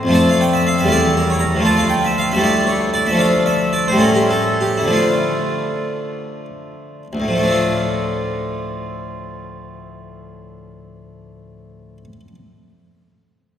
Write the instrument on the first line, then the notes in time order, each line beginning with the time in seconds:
harpsichord
Already playing: C4
0.03 F2 F3
0.08 A3 D4
0.14 A5
0.29 F5
0.41 G5
0.53 E5
0.67 F5
0.78 E2 E5
0.84 G3 A3
0.88 E4 D5
1.17 A#4
1.30 C#5
1.39 A#5
1.55 D2 F3
1.60 A3 F4
1.65 A5
1.77 F5
1.89 G5
2.04 E5
2.18 F5
2.31 D2 G3 E5
2.37 A3 E4
2.44 D5
2.67 C#5
2.94 D5
3.07 D2 E5
3.11 F3 A3 D4
3.19 F5
3.46 E5
3.73 D5
3.88 A2 C5
3.92 G3 A3
3.98 C#4 A#4
4.15 G4
4.31 A4
4.61 G4
4.77 E4
4.82 D3 F3
4.88 A3 D4
4.93 F4
7.13 D2
7.20 A2
7.28 F3
7.36 A3
7.43 D4
7.50 F4